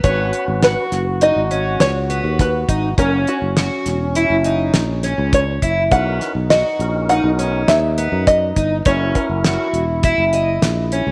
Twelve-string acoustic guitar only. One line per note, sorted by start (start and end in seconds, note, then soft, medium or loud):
0.04 0.43 B3 medium
0.63 1.02 F#4 medium
1.22 1.41 D#4 medium
1.51 1.90 C#4 medium
2.10 2.49 B3 medium
2.69 2.88 D#4 medium
2.99 3.37 C#4 medium
3.58 3.96 F#4 medium
4.16 4.35 E4 medium
4.45 4.84 D#4 medium
5.04 5.43 C#4 medium
5.63 5.82 E4 medium
5.92 6.31 B3 medium
6.51 6.90 F#4 medium
7.10 7.29 D#4 medium
7.39 7.78 C#4 medium
7.98 8.37 B3 medium
8.57 8.76 D#4 medium
8.86 9.25 C#4 medium
9.45 9.83 F#4 medium
10.04 10.24 E4 medium
10.34 10.72 D#5 medium
10.93 11.12 C#4 medium